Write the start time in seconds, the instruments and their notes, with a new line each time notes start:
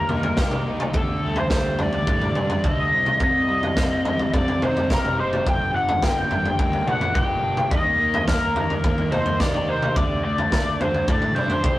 Already playing: overdriven electric guitar G3 A#3, lead electric guitar A#4
0.09 picked electric bass D#2, overdriven electric guitar D#4, floor tom, mid tom
0.23 floor tom
0.37 picked electric bass C2, overdriven electric guitar G4, kick, snare, mid tom
0.51 mid tom
0.67 overdriven electric guitar D#4
0.80 mid tom
0.94 picked electric bass D2, overdriven electric guitar D3, lead electric guitar A4, kick, floor tom
1.23 picked electric bass D2, overdriven electric guitar G3
1.36 lead electric guitar C5, floor tom
1.50 picked electric bass D2, overdriven electric guitar G3, kick, snare
1.79 picked electric bass D2, overdriven electric guitar D3, lead electric guitar D5, floor tom
1.93 floor tom
2.07 picked electric bass A2, overdriven electric guitar G3, kick, floor tom
2.21 floor tom
2.35 picked electric bass G2, overdriven electric guitar D4, mid tom
2.50 floor tom
2.64 picked electric bass D2, overdriven electric guitar A4, lead electric guitar D#5, kick, mid tom
2.92 picked electric bass C2, overdriven electric guitar C3
3.06 mid tom
3.20 picked electric bass C2, overdriven electric guitar C3, lead electric guitar D#5, kick, floor tom
3.48 picked electric bass C2, overdriven electric guitar G3
3.63 floor tom
3.76 picked electric bass C2, overdriven electric guitar C4, kick, snare, floor tom
4.05 picked electric bass C2, overdriven electric guitar G3, floor tom
4.19 floor tom
4.33 picked electric bass C2, overdriven electric guitar C4, lead electric guitar D5, kick, floor tom
4.48 floor tom
4.61 picked electric bass C2, overdriven electric guitar D#4, lead electric guitar C5, floor tom, mid tom
4.77 floor tom
4.90 picked electric bass F#1, overdriven electric guitar G4, lead electric guitar A#4, kick, snare, mid tom
5.05 mid tom
5.18 overdriven electric guitar D#4, lead electric guitar C5
5.33 mid tom
5.46 picked electric bass G1, overdriven electric guitar G2, lead electric guitar G5, kick, floor tom
5.74 picked electric bass G1, overdriven electric guitar D3, lead electric guitar F#5
5.89 floor tom
6.03 picked electric bass G1, overdriven electric guitar A#3, lead electric guitar G5, kick, snare
6.30 picked electric bass G1, overdriven electric guitar G3, floor tom
6.46 floor tom
6.59 picked electric bass D2, overdriven electric guitar A#3, lead electric guitar G5, kick, floor tom
6.73 floor tom
6.87 picked electric bass A#1, overdriven electric guitar D4, lead electric guitar F#5, mid tom
7.01 floor tom
7.14 picked electric bass G1, overdriven electric guitar G4, lead electric guitar G5, kick, mid tom
7.42 picked electric bass G1, overdriven electric guitar D4
7.57 mid tom
7.71 picked electric bass D#2, overdriven electric guitar D#3, lead electric guitar D#5, kick, floor tom
7.99 picked electric bass D#2, overdriven electric guitar A#3
8.14 floor tom
8.28 picked electric bass D#2, overdriven electric guitar A#3, lead electric guitar A#4, kick, snare, floor tom
8.55 picked electric bass D#2, overdriven electric guitar D#3, floor tom
8.70 floor tom
8.84 picked electric bass D#2, overdriven electric guitar A#3, kick, floor tom
8.98 floor tom
9.12 picked electric bass D#2, overdriven electric guitar D#4, lead electric guitar C5, floor tom, mid tom
9.26 floor tom
9.40 picked electric bass D#2, overdriven electric guitar G4, lead electric guitar D5, kick, snare, mid tom
9.54 mid tom
9.68 overdriven electric guitar D#4, lead electric guitar C5
9.82 mid tom
9.96 picked electric bass D2, overdriven electric guitar D3, lead electric guitar D5, kick, floor tom
10.24 picked electric bass D2, overdriven electric guitar A3, lead electric guitar D5
10.38 floor tom
10.52 picked electric bass D2, overdriven electric guitar A3, kick, snare
10.80 picked electric bass D2, overdriven electric guitar D3, lead electric guitar C5, floor tom
10.94 floor tom
11.08 picked electric bass A2, overdriven electric guitar A3, lead electric guitar D5, kick, floor tom
11.22 floor tom
11.35 picked electric bass G2, overdriven electric guitar D4, lead electric guitar C5, mid tom
11.50 floor tom
11.64 picked electric bass B1, overdriven electric guitar G4, kick, mid tom